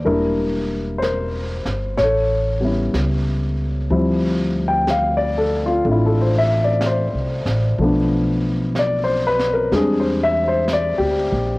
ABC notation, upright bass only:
X:1
M:4/4
L:1/8
Q:"Swing" 1/4=62
K:Ddor
V:1 name="Upright bass" clef=bass
E,,,3 G,,, A,,,2 ^C,,2 | D,,4 A,,,2- (3A,,, C,, A,,, | B,,,4 E,,2- (3E,, D,, _B,,, |]